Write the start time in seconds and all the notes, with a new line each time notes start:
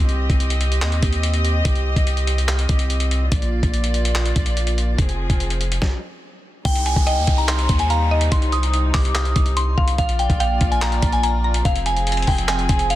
Already playing: C4
0.00 C2 G4 D#5
0.09 closed hi-hat
0.30 C2, kick, closed hi-hat
0.40 closed hi-hat
0.50 closed hi-hat
0.61 closed hi-hat
0.72 closed hi-hat
0.82 D#2, clap, closed hi-hat
0.92 closed hi-hat
1.02 D#2, kick, closed hi-hat
1.13 closed hi-hat
1.23 closed hi-hat
1.34 closed hi-hat
1.45 closed hi-hat
1.65 C2, kick, closed hi-hat
1.75 closed hi-hat
1.96 C2, kick, closed hi-hat
2.07 closed hi-hat
2.17 closed hi-hat
2.27 closed hi-hat
2.38 closed hi-hat
2.48 clap, closed hi-hat
2.59 closed hi-hat
2.69 C2, kick, closed hi-hat
2.79 closed hi-hat
2.90 closed hi-hat
3.00 closed hi-hat
3.11 closed hi-hat
3.32 A#1 A#3 F4 D5, kick, closed hi-hat
3.42 closed hi-hat
3.63 A#1, kick, closed hi-hat
3.74 closed hi-hat
3.84 closed hi-hat
3.94 closed hi-hat
4.05 closed hi-hat
4.15 clap, closed hi-hat
4.26 closed hi-hat
4.36 A#1, kick, closed hi-hat
4.46 closed hi-hat
4.57 closed hi-hat
4.67 closed hi-hat
4.78 closed hi-hat
4.98 F1 F3 C4 G#4, kick, closed hi-hat
5.09 closed hi-hat
5.30 F1, kick, closed hi-hat
5.40 closed hi-hat
5.50 closed hi-hat
5.61 closed hi-hat
5.72 closed hi-hat
5.82 kick, snare
6.65 C2 C3 G3 D#4 G5, kick, closed hi-hat, downlifter
6.75 closed hi-hat
6.86 G#5, closed hi-hat
6.96 C2, kick, closed hi-hat
7.07 D#5 G5, closed hi-hat
7.17 D#2
7.27 C2, kick, closed hi-hat
7.38 A#5, closed hi-hat
7.48 C6, clap, closed hi-hat
7.59 closed hi-hat
7.69 D#2, kick, closed hi-hat
7.79 G#5, closed hi-hat
7.90 F5 A#5, closed hi-hat
8.11 D#5
8.21 closed hi-hat
8.32 C2 C6, kick, closed hi-hat
8.42 closed hi-hat
8.52 D#6, closed hi-hat
8.63 closed hi-hat
8.73 closed hi-hat
8.94 C2 D6, kick, clap, open hi-hat
9.05 closed hi-hat
9.15 D#6, clap, closed hi-hat
9.25 closed hi-hat
9.36 C2, kick, closed hi-hat
9.46 closed hi-hat
9.57 C6, closed hi-hat
9.78 C2 F5, kick
9.88 closed hi-hat
9.98 A#1 A#3 F4 D5 F5, kick, closed hi-hat
10.09 closed hi-hat
10.19 G5, closed hi-hat
10.30 A#1, kick, closed hi-hat
10.40 F5 G5, closed hi-hat
10.61 A#1, kick, closed hi-hat
10.71 G#5, closed hi-hat
10.82 A#5, clap, closed hi-hat
10.92 closed hi-hat
11.02 A#1, kick, closed hi-hat
11.12 G#5, closed hi-hat
11.23 G#5 A#5, closed hi-hat
11.44 A#5
11.54 closed hi-hat
11.65 F1 F3 C4 G#4 F5, kick, closed hi-hat
11.76 closed hi-hat
11.86 G#5, closed hi-hat
11.97 closed hi-hat
12.07 closed hi-hat
12.12 closed hi-hat
12.17 closed hi-hat
12.22 closed hi-hat
12.27 F1 G5, kick, open hi-hat
12.38 closed hi-hat
12.48 G#5, clap, closed hi-hat
12.59 closed hi-hat
12.69 F1, kick, closed hi-hat
12.79 closed hi-hat
12.90 F5, closed hi-hat